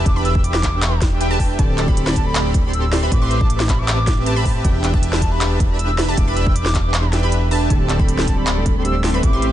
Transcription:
Already playing: supersaw synth D4 G4 B4 E5 A5, synth pluck A5
0.06 analog synth bass E1, soft synth lead D6, kick, closed hi-hat
0.16 supersaw synth D4 G4 B4 E5 B5, synth pluck B5, soft synth lead D6
0.25 soft synth lead E6, closed hi-hat
0.35 supersaw synth D4 G4 B4 E5 G5, synth pluck G5, kick
0.44 soft synth lead D6, closed hi-hat
0.54 snare
0.63 kick, clap, closed hi-hat
0.82 clap, closed hi-hat
1.01 kick, snare, closed hi-hat
1.21 supersaw synth D4 G4 B4 E5 G5, synth pluck G5, closed hi-hat
1.31 supersaw synth D4 G4 B4 E5 A5, synth pluck A5
1.40 supersaw synth D4 G4 B4 E5 G5, synth pluck G5, kick, open hi-hat
1.59 analog synth bass D1, supersaw synth C4 G4 A4 D5 A5, synth pluck A5, kick, closed hi-hat
1.78 clap, closed hi-hat
1.88 supersaw synth C4 G4 A4 D5 B5, synth pluck B5, kick
1.97 closed hi-hat
2.07 snare
2.16 soft synth lead A5, kick, closed hi-hat
2.26 soft synth lead B5
2.35 clap, closed hi-hat
2.54 kick, closed hi-hat
2.64 supersaw synth C4 G4 A4 D5 C6, synth pluck C6
2.73 soft synth lead E6, closed hi-hat
2.83 soft synth lead E6
2.93 snare, open hi-hat
3.03 supersaw synth C4 G4 B4 E5 B5, synth pluck B5
3.12 analog synth bass A1, soft synth lead D6, kick, closed hi-hat
3.22 supersaw synth C4 G4 B4 E5 C6, synth pluck C6
3.31 closed hi-hat
3.41 supersaw synth C4 G4 B4 E5 A5, synth pluck A5, kick
3.50 closed hi-hat
3.60 snare
3.69 soft synth lead B5, kick, clap, closed hi-hat
3.79 soft synth lead D6
3.88 clap, closed hi-hat
4.07 kick, snare, closed hi-hat
4.26 supersaw synth C4 G4 B4 E5 A5, synth pluck A5, closed hi-hat
4.36 supersaw synth C4 G4 B4 E5 B5, synth pluck B5
4.45 supersaw synth C4 G4 B4 E5 A5, synth pluck A5, kick, open hi-hat
4.65 analog synth bass E1, supersaw synth D4 G4 B4 E5 G5, synth pluck G5, kick, closed hi-hat
4.84 clap, closed hi-hat
4.94 supersaw synth D4 G4 B4 E5 A5, synth pluck A5, kick
5.03 closed hi-hat
5.13 snare
5.22 soft synth lead A5, kick, closed hi-hat
5.32 soft synth lead B5
5.41 clap, closed hi-hat
5.60 kick, closed hi-hat
5.70 supersaw synth D4 G4 B4 E5 B5, synth pluck B5
5.79 soft synth lead E6, closed hi-hat
5.89 soft synth lead E6
5.98 snare, open hi-hat
6.08 supersaw synth D4 G4 B4 E5 A5, synth pluck A5
6.17 analog synth bass E1, soft synth lead D6, kick, closed hi-hat
6.27 supersaw synth D4 G4 B4 E5 B5, synth pluck B5, soft synth lead D6
6.36 soft synth lead E6, closed hi-hat
6.47 supersaw synth D4 G4 B4 E5 G5, synth pluck G5, kick
6.56 soft synth lead D6, closed hi-hat
6.66 snare
6.75 kick, clap, closed hi-hat
6.94 clap, closed hi-hat
7.13 snare, closed hi-hat
7.23 supersaw synth D4 G4 B4 E5 B5, synth pluck B5
7.32 closed hi-hat
7.51 supersaw synth D4 G4 B4 E5 A5, synth pluck A5, open hi-hat
7.69 analog synth bass D1, tine electric piano D3 G3 A3 C4 G4, supersaw synth C4 G4 A4 D5 A5, synth pluck A5, kick, closed hi-hat
7.89 clap, closed hi-hat
7.98 tine electric piano D3 G3 A3 C4 A4, supersaw synth C4 G4 A4 D5 B5, synth pluck B5, kick
8.08 closed hi-hat
8.19 snare
8.27 tine electric piano D3 G3 A3 C4 A4, soft synth lead A5, kick, closed hi-hat
8.38 soft synth lead B5
8.47 clap, closed hi-hat
8.56 tine electric piano D3 G3 A3 C4 A4
8.66 kick, closed hi-hat
8.76 supersaw synth C4 G4 A4 D5 C6, synth pluck C6
8.84 tine electric piano D3 G3 A3 C4 G4, soft synth lead E6, closed hi-hat
8.95 soft synth lead E6
9.03 tine electric piano D3 G3 A3 C4 G4, snare, open hi-hat
9.14 supersaw synth C4 G4 B4 E5 B5, synth pluck B5
9.22 analog synth bass A1, tine electric piano E3 A3 B3 C4 G4, soft synth lead D6, kick, closed hi-hat
9.33 supersaw synth C4 G4 B4 E5 C6, synth pluck C6
9.42 closed hi-hat

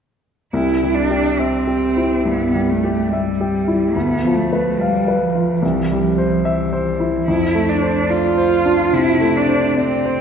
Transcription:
0.53 grand piano C2, cello E4
0.83 grand piano G3
0.94 cello D4
1.11 grand piano G4
1.39 cello C4, grand piano E5
1.67 grand piano G4
1.97 grand piano E4
2.25 grand piano G2, cello B3
2.55 grand piano G3
2.69 cello A3
2.84 grand piano G4
3.10 cello G3, grand piano E5
3.41 grand piano G4
3.68 grand piano E4
3.94 grand piano D2, cello B3
4.24 grand piano F3
4.35 cello A3
4.53 grand piano B4
4.79 cello G3, grand piano F5
5.08 grand piano B4
5.19 cello F3
5.35 grand piano F4
5.58 grand piano C2, cello E3
5.92 grand piano G3
6.01 cello F3
6.18 grand piano C5
6.44 cello E3, grand piano E5
6.73 grand piano C5
7.00 grand piano E4
7.27 grand piano F2, cello E4
7.55 grand piano A3
7.69 cello D4
7.82 grand piano C5
8.10 cello F4, grand piano D5
8.38 grand piano C5
8.65 grand piano D4
8.93 grand piano C3, cello E4
9.20 grand piano A3
9.36 cello D4
9.48 grand piano C5
9.77 cello C4, grand piano D5
10.05 grand piano C5

